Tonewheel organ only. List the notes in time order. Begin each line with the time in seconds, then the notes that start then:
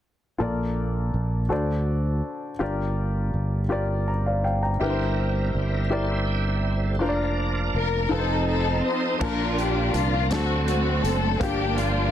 4.81 G3 C4 E4 A#4
5.91 A4 C5
6.09 C5 E5
6.27 E5 G5
6.47 C5 E5
6.83 A4 C5
7.01 F3 A#3 D4 A#4
8.10 F3 C4 D#4 A4
8.49 A5
8.65 F5
8.85 D#5
9.20 F3 A#3 C#4 A#4
9.27 D4
10.30 F#3 C4 D4 A4
11.40 F3 A#3 D4 F4
11.47 G4